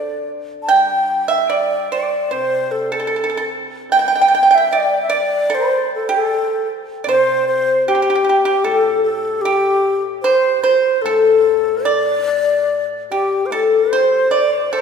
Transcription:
Already playing: D3 D5
0.63 A5
0.68 G3 G5
1.28 E5
1.50 D5
1.92 D5
2.31 C3 C5
2.71 A4
2.92 A4
3.00 A4
3.07 A4
3.16 A4
3.24 A4
3.30 A4
3.37 A4
3.90 G3 G5
3.94 G5
3.99 G5
4.08 G5
4.16 G5
4.21 G5
4.28 G5
4.35 G5
4.43 G5
4.51 E5 G5
4.58 G5
4.72 D5
5.02 E5
5.09 D5
5.50 C5
5.54 C5
5.95 A4
6.09 G4
6.16 A4
6.26 A4
7.04 C3 D5
7.09 C5
7.47 C5
7.88 G4
7.95 G4
8.02 G4
8.10 G4
8.15 G4
8.24 G4
8.29 G4
8.45 G4
8.64 A2 A4
9.04 A4
9.41 G4
10.22 C5
10.63 C5
11.02 A2 A4
11.85 D5
13.11 G4
13.46 A2 C5
13.51 A4
13.91 C5
14.31 D5
14.56 C5
14.72 C5

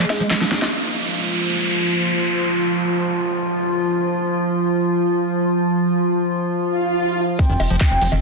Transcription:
Already playing: G#3 A#3
0.10 snare, open hi-hat, ride, high bongo
0.20 F3, closed hi-hat
0.31 F3, snare, clap, closed hi-hat, ride, high bongo
0.41 F3, snare
0.52 F3, snare, open hi-hat, ride
0.62 F4, snare, closed hi-hat, high bongo
0.72 F3 F4, downlifter
6.56 swell
7.39 F3 C4, kick, closed hi-hat, ride, high bongo
7.49 F1 D#3
7.60 F1 G#3, open hi-hat, ride, high bongo
7.70 F1 F3, closed hi-hat
7.81 D#3 C4, kick, clap, closed hi-hat, ride, high bongo
7.91 F1 G#3
8.02 F1 F3, open hi-hat, ride
8.12 F1 D#3, closed hi-hat, high bongo

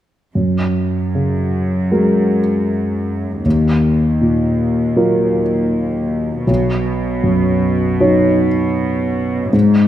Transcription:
0.35 F#2
1.15 C#3
1.91 G#3 F#4 A#4
3.45 D#2
4.21 A#2
4.96 F#3 F4 A#4
6.47 B1 B2
7.24 F#2
8.00 F#3 D#4 C#5
9.53 G#2

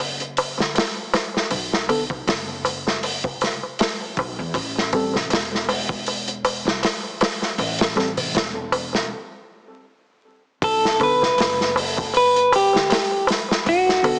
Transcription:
Already playing: F#1
0.00 open hi-hat, darbuka tek
0.20 closed hi-hat, darbuka tek
0.37 open hi-hat, darbuka tek
0.58 D2, snare, darbuka tek
0.75 snare, open hi-hat, darbuka tek
0.96 darbuka tek
1.14 snare, open hi-hat, darbuka tek
1.34 snare, darbuka tek
1.51 B1, open hi-hat, darbuka tek
1.72 snare, darbuka tek
1.89 D3 B3 A4, open hi-hat, darbuka tek
2.10 kick, darbuka tek, darbuka dum
2.27 F#1, snare, open hi-hat, darbuka tek
2.48 darbuka tek
2.65 open hi-hat, darbuka tek
2.87 snare, darbuka tek
3.03 open hi-hat, darbuka tek
3.24 kick, darbuka tek, darbuka dum
3.41 snare, open hi-hat, darbuka tek
3.63 darbuka tek
3.79 snare, open hi-hat, darbuka tek
4.01 darbuka tek
4.17 B1, kick, open hi-hat, darbuka tek
4.39 E2, darbuka tek
4.54 A1, kick, open hi-hat, darbuka tek
4.76 snare, darbuka tek
4.93 G3 C4 A4, kick, open hi-hat, darbuka tek
5.13 snare, darbuka tek, darbuka dum
5.30 E1, snare, open hi-hat, darbuka tek
5.51 snare, darbuka tek
5.69 open hi-hat, darbuka tek
5.89 kick, darbuka tek
6.06 open hi-hat, darbuka tek
6.28 closed hi-hat, darbuka tek
6.45 open hi-hat, darbuka tek
6.65 C2, snare, darbuka tek
6.83 snare, open hi-hat, darbuka tek
7.03 darbuka tek
7.21 snare, open hi-hat, darbuka tek
7.42 snare, darbuka tek
7.58 A1, open hi-hat, darbuka tek
7.79 snare, open hi-hat, darbuka tek
7.96 G3 C4 A4, snare, darbuka tek
8.17 open hi-hat, darbuka tek, darbuka dum
8.34 E1, snare, open hi-hat, darbuka tek
8.56 darbuka tek
8.72 open hi-hat, darbuka tek
8.93 snare, darbuka tek
10.62 B1 A4, kick, open hi-hat, darbuka tek
10.85 snare, darbuka tek
10.99 D3 B3 A4 B4, kick, open hi-hat, darbuka tek
11.22 snare, darbuka tek, darbuka dum
11.38 F#1, snare, open hi-hat, darbuka tek
11.60 snare, darbuka tek
11.76 open hi-hat, darbuka tek
11.97 kick, darbuka tek
12.14 B4, open hi-hat, darbuka tek
12.36 closed hi-hat, darbuka tek
12.52 G4, open hi-hat, darbuka tek
12.73 D2, snare, darbuka tek
12.90 snare, open hi-hat, darbuka tek
13.11 darbuka tek
13.27 snare, open hi-hat, darbuka tek
13.49 snare, darbuka tek
13.66 B1 F#4, open hi-hat, darbuka tek
13.87 snare, darbuka tek
14.03 D3 B3 A4, open hi-hat, darbuka tek

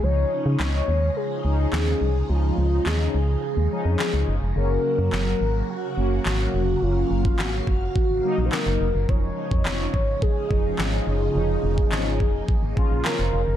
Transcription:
0.03 C#2 C#3 F3 G#3 C#4 D#4 C#5
0.46 C#3
0.60 C#2 C#5, snare, clap
0.88 D#2
1.17 G#4
1.45 C#2 F3 C#4 D#4
1.73 D#2 G#4, snare, clap
2.01 C2
2.29 C#2 F3 C#4 D#4 F4
2.58 C#2
2.86 D#2 G#4, snare, clap
3.15 C#2
3.57 D#2
3.71 F3 C#4 D#4
3.85 F2
3.99 G#4, snare, clap
4.14 C#2
4.28 F#1
4.42 F1
4.56 F#1 F#3 A#3 C#4 F#4 A#4
4.99 F#2
5.13 F#1 A#4, snare, clap
5.41 G#1
5.69 F#4
5.97 F#1 F#3 A#3 C#4
6.26 G#1 F#4, snare, clap
6.54 F1
6.82 F#1 F#3 A#3 C#4 F4 F5
7.11 F#1
7.25 kick
7.39 G#1 F#4, snare, clap
7.67 F#1, kick
7.96 kick
8.10 G#1
8.24 F#3 A#3 D#4
8.38 A#1
8.45 C5
8.52 A#4, snare, clap
8.66 F#1
8.81 F1
8.95 F#1
9.09 F1 C#3 F3 G#3 C#4 D#4 C#5, kick
9.51 F2, kick
9.66 F1 C#5, snare, clap
9.94 G#1, kick
10.22 G#4, kick
10.50 F1 F3 C#4 D#4, kick
10.79 G#1, snare, clap
11.07 F#1
11.35 F1 F3 A#3 C#4 D#4
11.64 F1
11.78 kick
11.92 G#1, snare, clap
12.20 F1, kick
12.48 kick
12.63 G#1
12.77 F3 C#4 F4, kick
12.91 A#1
13.05 A#4, snare, clap
13.19 F1
13.33 F1
13.48 F#1

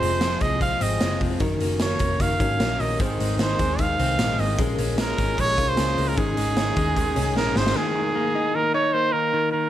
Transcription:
Already playing: F2 C3 F3 G#3 C4 F4 G#4 C5
0.01 F1 G#3, closed hi-hat
0.21 F2 C3 F3 G#3 C4 G#4, snare, closed hi-hat
0.41 C2 F3 G#3 C4 G#4 D#5, kick, closed hi-hat
0.61 F3 G#3 C4 G#4 F5, kick, closed hi-hat
0.81 G#1 F3 G#3 C4 G#4 D#5, closed hi-hat
1.01 F#1 F2 C3 F3 G#3 C4 G#4, snare, closed hi-hat
1.20 F1 F3, kick, open hi-hat
1.40 F#1 D#3 F#3 C#4 D#4 F#4 A#4, kick, closed hi-hat
1.60 F#1 A#3, closed hi-hat
1.80 D#3 F#3 C#4 D#4 A#4 C#5, snare, closed hi-hat
1.99 F1 A#3 C#4 D#4 A#4, kick, closed hi-hat
2.20 F#1 D#3 F#3 C#4 D#4 A#4 F5, kick, closed hi-hat
2.40 G#1 C#4 D#4 F#4 A#4, kick, closed hi-hat
2.59 A#1 F#3 A#3 C#4 D#4 A#4, snare, closed hi-hat
2.80 A#1 D#3 D#5, open hi-hat
2.99 G#1 G#2 D#3 G#3 C4 D#4 G#4 C5, kick, closed hi-hat
3.20 G#1 G#3, closed hi-hat
3.39 G#2 D#3 G#3 C4 D#4 G#4 C5, snare, closed hi-hat
3.59 D#2 G#3 C4 D#4 G#4, kick, snare, closed hi-hat
3.78 D#3 G#3 C4 D#4 G#4 F5, kick, closed hi-hat
3.98 C2 G#3 C4 D#4 G#4, closed hi-hat
4.18 A#1 G#2 D#3 G#3 C4 D#4 G#4, snare, closed hi-hat
4.39 G#1 D#3 D#5, open hi-hat
4.57 A#1 A#2 G#3 C#4 F4 G#4 A#4, kick, closed hi-hat
4.78 A#1 C#4, closed hi-hat
4.97 A#2 G#3 C#4 F4 G#4 A#4, snare, closed hi-hat
5.18 G#1 C#4 F4 G#4, kick, snare, closed hi-hat
5.37 A#1 G#3 C#4 F4 G#4 C#5, kick, closed hi-hat
5.58 C2 C#4 F4 G#4 A#4, kick, closed hi-hat
5.69 C5
5.77 C#2 A#2 G#3 C#4 F4 G#4, snare, closed hi-hat
5.97 C#2 G#3, open hi-hat
6.08 A#4
6.17 G#1 G#2 C#3 D#3 G#3 C#4 D#4 G#4, kick, closed hi-hat
6.37 G#1 G#3, closed hi-hat
6.57 G#2 C#3 D#3 G#3 C#4 D#4 G#4, snare, closed hi-hat
6.75 D#2 G#3 C#4 D#4 G#4, kick, closed hi-hat
6.96 D#3 G#3 C#4 D#4 G#4, kick, closed hi-hat
7.15 C2 G#3 C#4 D#4 G#4, closed hi-hat
7.35 A#1 G#2 C#3 G#3 C#4 D#4 G#4 A#4, snare
7.56 G#1 D#3 C5, snare
7.66 snare
7.75 D#3 G#4
7.95 D#3
8.15 A#3
8.35 D#4
8.55 D#3 A#4
8.74 D#4 C#5
8.93 A#3 C5
9.12 D#3 A#4
9.34 D#3
9.52 D#3 A#4

